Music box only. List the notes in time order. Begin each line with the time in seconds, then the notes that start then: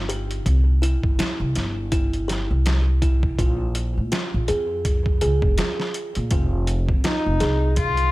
0.09 G4
0.82 E4
1.19 E4
1.92 E4
2.28 G4
3.02 E4
3.39 F4
4.12 F4
4.48 G#4
5.22 G#4
5.58 F4
6.32 F4
7.04 F4
7.41 G#4